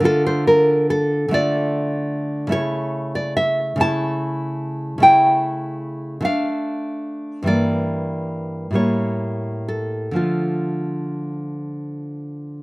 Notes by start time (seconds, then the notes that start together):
0.00 D3 A3 F4
0.05 A4
0.27 C5
0.47 A#4
0.90 A4
1.28 D3 A3
1.33 F4 D5
2.47 C#3 A3 E4
2.52 C#5
3.15 D5
3.37 E5
3.76 C#3 A3
3.80 E4 A5
4.98 C#3 A3
5.02 E4 G5
6.21 D3 A3 D4
6.25 F5
7.43 G2 E3 A#3
7.47 D5
8.71 A2 G3 A#3
8.75 C#5
9.68 A4
10.11 D3 F3
10.15 A3 F4